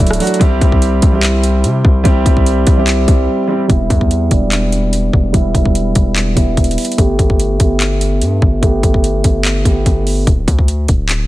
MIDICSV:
0, 0, Header, 1, 4, 480
1, 0, Start_track
1, 0, Key_signature, 1, "minor"
1, 0, Tempo, 410959
1, 477, Time_signature, 4, 2, 24, 8
1, 13166, End_track
2, 0, Start_track
2, 0, Title_t, "Grand piano"
2, 0, Program_c, 0, 0
2, 0, Control_c, 0, 64, 127
2, 0, Note_on_c, 0, 54, 86
2, 0, Note_on_c, 0, 57, 85
2, 0, Note_on_c, 0, 62, 80
2, 0, Note_on_c, 0, 64, 100
2, 0, Note_on_c, 0, 66, 127
2, 117, Note_off_c, 0, 64, 0
2, 219, Note_off_c, 0, 54, 0
2, 219, Note_on_c, 0, 54, 90
2, 230, Note_off_c, 0, 57, 0
2, 230, Note_on_c, 0, 57, 82
2, 240, Note_off_c, 0, 62, 0
2, 240, Note_on_c, 0, 62, 86
2, 252, Note_off_c, 0, 66, 0
2, 252, Note_on_c, 0, 66, 105
2, 432, Note_off_c, 0, 54, 0
2, 437, Note_off_c, 0, 57, 0
2, 442, Note_off_c, 0, 62, 0
2, 448, Note_off_c, 0, 66, 0
2, 461, Note_on_c, 0, 55, 114
2, 472, Note_on_c, 0, 60, 104
2, 483, Note_on_c, 0, 64, 98
2, 490, Control_c, 0, 64, 0
2, 494, Note_on_c, 0, 67, 127
2, 716, Control_c, 0, 64, 127
2, 1175, Note_off_c, 0, 55, 0
2, 1181, Note_off_c, 0, 60, 0
2, 1187, Note_off_c, 0, 64, 0
2, 1192, Note_off_c, 0, 67, 0
2, 1310, Note_on_c, 0, 55, 90
2, 1321, Note_on_c, 0, 60, 82
2, 1332, Note_on_c, 0, 64, 83
2, 1342, Note_on_c, 0, 67, 106
2, 2118, Note_off_c, 0, 55, 0
2, 2124, Note_off_c, 0, 60, 0
2, 2129, Note_off_c, 0, 64, 0
2, 2135, Note_off_c, 0, 67, 0
2, 2380, Note_on_c, 0, 55, 120
2, 2390, Note_on_c, 0, 60, 103
2, 2402, Note_on_c, 0, 64, 99
2, 2413, Note_on_c, 0, 67, 122
2, 3095, Note_off_c, 0, 55, 0
2, 3100, Note_off_c, 0, 60, 0
2, 3106, Note_off_c, 0, 64, 0
2, 3111, Note_off_c, 0, 67, 0
2, 3230, Note_on_c, 0, 55, 90
2, 3241, Note_on_c, 0, 60, 77
2, 3252, Note_on_c, 0, 64, 88
2, 3263, Note_on_c, 0, 67, 105
2, 3942, Note_off_c, 0, 55, 0
2, 3947, Note_off_c, 0, 60, 0
2, 3953, Note_off_c, 0, 64, 0
2, 3959, Note_off_c, 0, 67, 0
2, 4059, Note_on_c, 0, 55, 96
2, 4071, Note_on_c, 0, 60, 86
2, 4081, Note_on_c, 0, 64, 76
2, 4093, Note_on_c, 0, 67, 95
2, 4272, Note_off_c, 0, 55, 0
2, 4278, Note_off_c, 0, 60, 0
2, 4283, Note_off_c, 0, 64, 0
2, 4289, Note_off_c, 0, 67, 0
2, 4299, Note_on_c, 0, 55, 118
2, 4315, Note_on_c, 0, 59, 105
2, 4332, Note_on_c, 0, 64, 121
2, 4334, Control_c, 0, 64, 0
2, 4510, Control_c, 0, 64, 127
2, 4919, Note_off_c, 0, 55, 0
2, 4928, Note_off_c, 0, 59, 0
2, 4936, Note_off_c, 0, 64, 0
2, 5018, Note_on_c, 0, 55, 83
2, 5033, Note_on_c, 0, 59, 77
2, 5051, Note_on_c, 0, 62, 98
2, 5839, Note_off_c, 0, 55, 0
2, 5847, Note_off_c, 0, 59, 0
2, 5856, Note_off_c, 0, 62, 0
2, 6220, Note_on_c, 0, 55, 109
2, 6235, Note_on_c, 0, 59, 100
2, 6253, Note_on_c, 0, 64, 116
2, 7040, Note_off_c, 0, 55, 0
2, 7048, Note_off_c, 0, 59, 0
2, 7056, Note_off_c, 0, 64, 0
2, 7419, Note_on_c, 0, 55, 79
2, 7435, Note_on_c, 0, 59, 84
2, 7452, Note_on_c, 0, 64, 97
2, 8040, Note_off_c, 0, 55, 0
2, 8048, Note_off_c, 0, 59, 0
2, 8056, Note_off_c, 0, 64, 0
2, 8145, Note_on_c, 0, 57, 106
2, 8161, Note_on_c, 0, 59, 98
2, 8171, Control_c, 0, 64, 0
2, 8177, Note_on_c, 0, 67, 127
2, 8362, Control_c, 0, 64, 127
2, 8763, Note_off_c, 0, 57, 0
2, 8771, Note_off_c, 0, 59, 0
2, 8779, Note_off_c, 0, 67, 0
2, 8858, Note_on_c, 0, 57, 83
2, 8873, Note_on_c, 0, 59, 76
2, 8890, Note_on_c, 0, 67, 99
2, 9679, Note_off_c, 0, 57, 0
2, 9687, Note_off_c, 0, 59, 0
2, 9695, Note_off_c, 0, 67, 0
2, 10061, Note_on_c, 0, 57, 113
2, 10076, Note_on_c, 0, 59, 99
2, 10093, Note_on_c, 0, 67, 116
2, 10881, Note_off_c, 0, 57, 0
2, 10888, Note_off_c, 0, 59, 0
2, 10897, Note_off_c, 0, 67, 0
2, 11257, Note_on_c, 0, 57, 81
2, 11274, Note_on_c, 0, 59, 80
2, 11291, Note_on_c, 0, 67, 88
2, 11879, Note_off_c, 0, 57, 0
2, 11887, Note_off_c, 0, 59, 0
2, 11896, Note_off_c, 0, 67, 0
2, 12013, Control_c, 0, 64, 0
2, 13166, End_track
3, 0, Start_track
3, 0, Title_t, "808-style bass"
3, 0, Program_c, 1, 38
3, 0, Note_on_c, 1, 26, 106
3, 227, Note_off_c, 1, 26, 0
3, 476, Note_on_c, 1, 36, 112
3, 707, Note_off_c, 1, 36, 0
3, 717, Note_on_c, 1, 36, 103
3, 1178, Note_off_c, 1, 36, 0
3, 1197, Note_on_c, 1, 36, 104
3, 1917, Note_on_c, 1, 48, 102
3, 1935, Note_off_c, 1, 36, 0
3, 2145, Note_off_c, 1, 48, 0
3, 2156, Note_on_c, 1, 36, 108
3, 2387, Note_off_c, 1, 36, 0
3, 2397, Note_on_c, 1, 36, 112
3, 2627, Note_off_c, 1, 36, 0
3, 2637, Note_on_c, 1, 36, 104
3, 3098, Note_off_c, 1, 36, 0
3, 3118, Note_on_c, 1, 36, 103
3, 3578, Note_off_c, 1, 36, 0
3, 3596, Note_on_c, 1, 36, 105
3, 3827, Note_off_c, 1, 36, 0
3, 4317, Note_on_c, 1, 28, 109
3, 4547, Note_off_c, 1, 28, 0
3, 4558, Note_on_c, 1, 40, 103
3, 5018, Note_off_c, 1, 40, 0
3, 5038, Note_on_c, 1, 28, 106
3, 5959, Note_off_c, 1, 28, 0
3, 5997, Note_on_c, 1, 28, 103
3, 6227, Note_off_c, 1, 28, 0
3, 6237, Note_on_c, 1, 28, 110
3, 6467, Note_off_c, 1, 28, 0
3, 6478, Note_on_c, 1, 28, 105
3, 6938, Note_off_c, 1, 28, 0
3, 6958, Note_on_c, 1, 28, 104
3, 7418, Note_off_c, 1, 28, 0
3, 7436, Note_on_c, 1, 28, 101
3, 7667, Note_off_c, 1, 28, 0
3, 7677, Note_on_c, 1, 28, 103
3, 7907, Note_off_c, 1, 28, 0
3, 8156, Note_on_c, 1, 31, 112
3, 8387, Note_off_c, 1, 31, 0
3, 8398, Note_on_c, 1, 31, 106
3, 8858, Note_off_c, 1, 31, 0
3, 8877, Note_on_c, 1, 31, 102
3, 9596, Note_on_c, 1, 43, 99
3, 9613, Note_off_c, 1, 31, 0
3, 9824, Note_off_c, 1, 43, 0
3, 9836, Note_on_c, 1, 31, 101
3, 10067, Note_off_c, 1, 31, 0
3, 10076, Note_on_c, 1, 31, 114
3, 10306, Note_off_c, 1, 31, 0
3, 10317, Note_on_c, 1, 31, 103
3, 10777, Note_off_c, 1, 31, 0
3, 10797, Note_on_c, 1, 31, 102
3, 11258, Note_off_c, 1, 31, 0
3, 11275, Note_on_c, 1, 31, 98
3, 11506, Note_off_c, 1, 31, 0
3, 11517, Note_on_c, 1, 31, 104
3, 11978, Note_off_c, 1, 31, 0
3, 11996, Note_on_c, 1, 26, 114
3, 12227, Note_off_c, 1, 26, 0
3, 12237, Note_on_c, 1, 38, 100
3, 12697, Note_off_c, 1, 38, 0
3, 12716, Note_on_c, 1, 26, 105
3, 13166, Note_off_c, 1, 26, 0
3, 13166, End_track
4, 0, Start_track
4, 0, Title_t, "Drums"
4, 76, Note_on_c, 9, 42, 71
4, 123, Note_on_c, 9, 37, 104
4, 156, Note_off_c, 9, 42, 0
4, 156, Note_on_c, 9, 42, 68
4, 237, Note_off_c, 9, 42, 0
4, 237, Note_on_c, 9, 42, 70
4, 238, Note_on_c, 9, 46, 70
4, 240, Note_off_c, 9, 37, 0
4, 316, Note_off_c, 9, 42, 0
4, 316, Note_on_c, 9, 42, 71
4, 355, Note_off_c, 9, 46, 0
4, 396, Note_off_c, 9, 42, 0
4, 396, Note_on_c, 9, 42, 66
4, 476, Note_off_c, 9, 42, 0
4, 476, Note_on_c, 9, 36, 116
4, 476, Note_on_c, 9, 42, 70
4, 593, Note_off_c, 9, 36, 0
4, 593, Note_off_c, 9, 42, 0
4, 717, Note_on_c, 9, 36, 98
4, 720, Note_on_c, 9, 42, 74
4, 834, Note_off_c, 9, 36, 0
4, 837, Note_off_c, 9, 42, 0
4, 845, Note_on_c, 9, 36, 85
4, 957, Note_on_c, 9, 42, 82
4, 961, Note_off_c, 9, 36, 0
4, 1074, Note_off_c, 9, 42, 0
4, 1194, Note_on_c, 9, 42, 90
4, 1197, Note_on_c, 9, 36, 99
4, 1310, Note_off_c, 9, 42, 0
4, 1314, Note_off_c, 9, 36, 0
4, 1435, Note_on_c, 9, 39, 107
4, 1437, Note_on_c, 9, 42, 85
4, 1552, Note_off_c, 9, 39, 0
4, 1554, Note_off_c, 9, 42, 0
4, 1676, Note_on_c, 9, 42, 75
4, 1793, Note_off_c, 9, 42, 0
4, 1916, Note_on_c, 9, 42, 80
4, 2032, Note_off_c, 9, 42, 0
4, 2157, Note_on_c, 9, 36, 91
4, 2273, Note_off_c, 9, 36, 0
4, 2396, Note_on_c, 9, 42, 75
4, 2397, Note_on_c, 9, 36, 114
4, 2513, Note_off_c, 9, 36, 0
4, 2513, Note_off_c, 9, 42, 0
4, 2637, Note_on_c, 9, 36, 96
4, 2640, Note_on_c, 9, 42, 77
4, 2754, Note_off_c, 9, 36, 0
4, 2756, Note_off_c, 9, 42, 0
4, 2765, Note_on_c, 9, 36, 83
4, 2878, Note_on_c, 9, 42, 83
4, 2882, Note_off_c, 9, 36, 0
4, 2995, Note_off_c, 9, 42, 0
4, 3114, Note_on_c, 9, 42, 92
4, 3118, Note_on_c, 9, 36, 99
4, 3231, Note_off_c, 9, 42, 0
4, 3235, Note_off_c, 9, 36, 0
4, 3356, Note_on_c, 9, 39, 108
4, 3358, Note_on_c, 9, 42, 86
4, 3473, Note_off_c, 9, 39, 0
4, 3475, Note_off_c, 9, 42, 0
4, 3597, Note_on_c, 9, 36, 99
4, 3597, Note_on_c, 9, 42, 76
4, 3713, Note_off_c, 9, 36, 0
4, 3714, Note_off_c, 9, 42, 0
4, 4317, Note_on_c, 9, 36, 116
4, 4317, Note_on_c, 9, 42, 71
4, 4434, Note_off_c, 9, 36, 0
4, 4434, Note_off_c, 9, 42, 0
4, 4558, Note_on_c, 9, 36, 93
4, 4561, Note_on_c, 9, 42, 72
4, 4675, Note_off_c, 9, 36, 0
4, 4677, Note_off_c, 9, 42, 0
4, 4685, Note_on_c, 9, 36, 83
4, 4798, Note_on_c, 9, 42, 82
4, 4802, Note_off_c, 9, 36, 0
4, 4915, Note_off_c, 9, 42, 0
4, 5034, Note_on_c, 9, 42, 85
4, 5038, Note_on_c, 9, 36, 94
4, 5151, Note_off_c, 9, 42, 0
4, 5155, Note_off_c, 9, 36, 0
4, 5277, Note_on_c, 9, 39, 106
4, 5279, Note_on_c, 9, 42, 86
4, 5394, Note_off_c, 9, 39, 0
4, 5396, Note_off_c, 9, 42, 0
4, 5518, Note_on_c, 9, 42, 72
4, 5635, Note_off_c, 9, 42, 0
4, 5756, Note_on_c, 9, 42, 77
4, 5873, Note_off_c, 9, 42, 0
4, 5997, Note_on_c, 9, 36, 89
4, 6114, Note_off_c, 9, 36, 0
4, 6237, Note_on_c, 9, 36, 111
4, 6237, Note_on_c, 9, 42, 69
4, 6354, Note_off_c, 9, 36, 0
4, 6354, Note_off_c, 9, 42, 0
4, 6478, Note_on_c, 9, 36, 91
4, 6480, Note_on_c, 9, 42, 72
4, 6595, Note_off_c, 9, 36, 0
4, 6597, Note_off_c, 9, 42, 0
4, 6605, Note_on_c, 9, 36, 83
4, 6718, Note_on_c, 9, 42, 80
4, 6722, Note_off_c, 9, 36, 0
4, 6834, Note_off_c, 9, 42, 0
4, 6954, Note_on_c, 9, 42, 84
4, 6958, Note_on_c, 9, 36, 100
4, 7070, Note_off_c, 9, 42, 0
4, 7074, Note_off_c, 9, 36, 0
4, 7195, Note_on_c, 9, 39, 105
4, 7197, Note_on_c, 9, 42, 82
4, 7312, Note_off_c, 9, 39, 0
4, 7314, Note_off_c, 9, 42, 0
4, 7436, Note_on_c, 9, 36, 94
4, 7437, Note_on_c, 9, 42, 74
4, 7553, Note_off_c, 9, 36, 0
4, 7554, Note_off_c, 9, 42, 0
4, 7677, Note_on_c, 9, 36, 91
4, 7677, Note_on_c, 9, 42, 69
4, 7757, Note_off_c, 9, 42, 0
4, 7757, Note_on_c, 9, 42, 67
4, 7794, Note_off_c, 9, 36, 0
4, 7837, Note_off_c, 9, 42, 0
4, 7837, Note_on_c, 9, 42, 65
4, 7918, Note_off_c, 9, 42, 0
4, 7918, Note_on_c, 9, 42, 67
4, 7920, Note_on_c, 9, 46, 71
4, 7998, Note_off_c, 9, 42, 0
4, 7998, Note_on_c, 9, 42, 65
4, 8036, Note_off_c, 9, 46, 0
4, 8078, Note_off_c, 9, 42, 0
4, 8078, Note_on_c, 9, 42, 64
4, 8156, Note_off_c, 9, 42, 0
4, 8156, Note_on_c, 9, 42, 72
4, 8157, Note_on_c, 9, 36, 110
4, 8273, Note_off_c, 9, 36, 0
4, 8273, Note_off_c, 9, 42, 0
4, 8397, Note_on_c, 9, 36, 95
4, 8400, Note_on_c, 9, 42, 74
4, 8514, Note_off_c, 9, 36, 0
4, 8517, Note_off_c, 9, 42, 0
4, 8525, Note_on_c, 9, 36, 80
4, 8638, Note_on_c, 9, 42, 82
4, 8641, Note_off_c, 9, 36, 0
4, 8755, Note_off_c, 9, 42, 0
4, 8875, Note_on_c, 9, 42, 86
4, 8877, Note_on_c, 9, 36, 97
4, 8992, Note_off_c, 9, 42, 0
4, 8994, Note_off_c, 9, 36, 0
4, 9116, Note_on_c, 9, 39, 109
4, 9118, Note_on_c, 9, 42, 82
4, 9232, Note_off_c, 9, 39, 0
4, 9235, Note_off_c, 9, 42, 0
4, 9357, Note_on_c, 9, 42, 73
4, 9474, Note_off_c, 9, 42, 0
4, 9596, Note_on_c, 9, 42, 78
4, 9712, Note_off_c, 9, 42, 0
4, 9836, Note_on_c, 9, 36, 87
4, 9953, Note_off_c, 9, 36, 0
4, 10076, Note_on_c, 9, 36, 107
4, 10076, Note_on_c, 9, 42, 68
4, 10193, Note_off_c, 9, 36, 0
4, 10193, Note_off_c, 9, 42, 0
4, 10317, Note_on_c, 9, 36, 93
4, 10320, Note_on_c, 9, 42, 70
4, 10434, Note_off_c, 9, 36, 0
4, 10436, Note_off_c, 9, 42, 0
4, 10444, Note_on_c, 9, 36, 83
4, 10558, Note_on_c, 9, 42, 81
4, 10561, Note_off_c, 9, 36, 0
4, 10674, Note_off_c, 9, 42, 0
4, 10794, Note_on_c, 9, 42, 86
4, 10797, Note_on_c, 9, 36, 96
4, 10911, Note_off_c, 9, 42, 0
4, 10914, Note_off_c, 9, 36, 0
4, 11036, Note_on_c, 9, 39, 107
4, 11038, Note_on_c, 9, 42, 84
4, 11153, Note_off_c, 9, 39, 0
4, 11155, Note_off_c, 9, 42, 0
4, 11276, Note_on_c, 9, 36, 93
4, 11277, Note_on_c, 9, 42, 71
4, 11393, Note_off_c, 9, 36, 0
4, 11394, Note_off_c, 9, 42, 0
4, 11516, Note_on_c, 9, 36, 90
4, 11516, Note_on_c, 9, 42, 81
4, 11633, Note_off_c, 9, 36, 0
4, 11633, Note_off_c, 9, 42, 0
4, 11758, Note_on_c, 9, 46, 69
4, 11875, Note_off_c, 9, 46, 0
4, 11997, Note_on_c, 9, 36, 113
4, 11997, Note_on_c, 9, 42, 71
4, 12113, Note_off_c, 9, 36, 0
4, 12114, Note_off_c, 9, 42, 0
4, 12237, Note_on_c, 9, 36, 95
4, 12240, Note_on_c, 9, 42, 76
4, 12354, Note_off_c, 9, 36, 0
4, 12357, Note_off_c, 9, 42, 0
4, 12364, Note_on_c, 9, 36, 83
4, 12477, Note_on_c, 9, 42, 84
4, 12481, Note_off_c, 9, 36, 0
4, 12593, Note_off_c, 9, 42, 0
4, 12713, Note_on_c, 9, 42, 85
4, 12717, Note_on_c, 9, 36, 94
4, 12830, Note_off_c, 9, 42, 0
4, 12834, Note_off_c, 9, 36, 0
4, 12954, Note_on_c, 9, 39, 104
4, 12956, Note_on_c, 9, 42, 82
4, 13071, Note_off_c, 9, 39, 0
4, 13073, Note_off_c, 9, 42, 0
4, 13166, End_track
0, 0, End_of_file